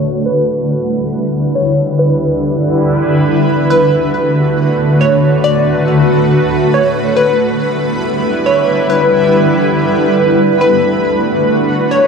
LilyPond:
<<
  \new Staff \with { instrumentName = "Synth pluck" } { \time 4/4 \key d \major \tempo 4 = 139 r8 b'8 r2 r8 cis''8 | r8 b'8 r2. | r8 b'8 r2 r8 cis''8 | r8 d''8 r2 r8 cis''8 |
r8 b'8 r2 r8 cis''8 | r8 b'8 r2. | r8 b'8 r2 r8 cis''8 | }
  \new Staff \with { instrumentName = "Ambient pad" } { \time 4/4 \key d \major << { b'1~ | b'1 | b'1~ | b'1~ |
b'1~ | b'1~ | b'1 | } \\ { <d g e'>1~ | <d g e'>1 | <d a fis'>1~ | <d a fis'>1 |
<d g e'>1~ | <d g e'>1 | <d a fis'>1 | } >> }
>>